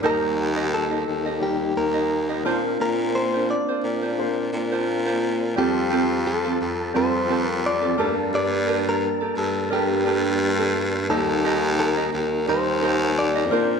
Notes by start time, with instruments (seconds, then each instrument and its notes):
0.02 baritone saxophone D#2, tonewheel organ D#3 A#3 D#4 G4, grand piano G3 D#4 A#4, ukulele D#4 G4 A#4 D#5, clean electric guitar A#4
0.56 ukulele D#4 G4 D#5
0.74 clean electric guitar A4
0.91 ukulele D#4 G4 D#5
1.07 baritone saxophone D#2
1.25 ukulele D#4 G4 D#5
1.40 grand piano G3 D#4 A#4, clean electric guitar G4
1.76 baritone saxophone D#2, clean electric guitar A#4
1.94 ukulele D#4 G4 D#5
2.29 ukulele D#4 G4 D#5
2.44 baritone saxophone A#2, grand piano A#3 D4 C5, tonewheel organ A#3 C4 D4, ukulele D4 F4 A#4 C5
2.80 baritone saxophone A#2, clean electric guitar A#4
3.15 clean electric guitar C5
3.34 ukulele D4 F4 C5
3.50 clean electric guitar D5
3.69 ukulele D4 F4 C5
3.84 baritone saxophone A#2
4.02 ukulele D4 F4 C5
4.17 grand piano A#3 D4 C5
4.53 baritone saxophone A#2
4.72 ukulele D4 F4 C5
5.06 ukulele D4 F4 C5
5.56 baritone saxophone F2, tonewheel organ F3 C4 G4 A5, grand piano G3 F4 G4, ukulele C4 F4 G4 A4, clean electric guitar G4
5.64 grand piano A4
5.91 ukulele C4 F4 G4 A4
6.27 clean electric guitar A4
6.44 ukulele C4 F4 A4
6.60 baritone saxophone F2
6.94 baritone saxophone F2, grand piano G3 F4 G4, ukulele C4 F4 G4 A4, clean electric guitar C5
7.02 grand piano A4
7.28 ukulele C4 F4 G4 A4
7.49 clean electric guitar A#4
7.66 clean electric guitar D5
7.82 ukulele C4 F4 A4
7.97 baritone saxophone G2, grand piano G3 A3 A4, tonewheel organ G3 A#3 D4, ukulele D4 G4 A4 A#4
8.05 grand piano A#3
8.33 baritone saxophone G2, clean electric guitar D5
8.67 ukulele D4 G4 A#4
8.89 clean electric guitar A#4
9.21 ukulele D4 G4 A4
9.36 baritone saxophone G2, clean electric guitar A4
9.70 baritone saxophone G2, grand piano G3 A#3 A4, ukulele D4 G4 A4 A#4, clean electric guitar G4
10.04 ukulele D4 G4 A4 A#4
10.59 ukulele D4 G4 A4
11.09 baritone saxophone D#2, tonewheel organ D#3 D#4 G4, grand piano G3 A#3 D#4, ukulele D#4 G4 D#5, clean electric guitar A4
11.44 ukulele D#4 G4 D#5
11.80 clean electric guitar A#4
11.97 ukulele D#4 G4 D#5
12.13 baritone saxophone D#2
12.46 baritone saxophone D#2, grand piano G3 D#4 A#4, ukulele D#4 G4 A#4 D#5, clean electric guitar C5
12.82 ukulele D#4 G4 A#4 D#5
13.19 clean electric guitar D5
13.35 ukulele D#4 G4 D#5
13.50 baritone saxophone A#2, grand piano A#3 D4 C5, tonewheel organ A#3 C4 D4, ukulele D4 F4 A#4 C5